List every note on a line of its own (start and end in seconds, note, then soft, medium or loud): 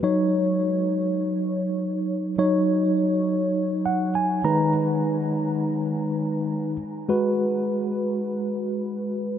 0.03 2.34 F#3 medium
0.03 2.35 D#4 medium
0.03 2.35 C#5 medium
2.38 4.40 F#3 medium
2.38 4.41 D#4 medium
2.38 4.41 C#5 medium
3.86 4.13 F#5 medium
4.15 4.43 G#5 medium
4.44 6.76 D#3 medium
4.44 6.76 G#3 medium
4.44 6.76 D#4 medium
4.44 6.76 B4 medium
4.44 4.72 A#5 medium
7.09 9.38 G#3 medium
7.09 9.38 F#4 medium
7.09 9.38 B4 medium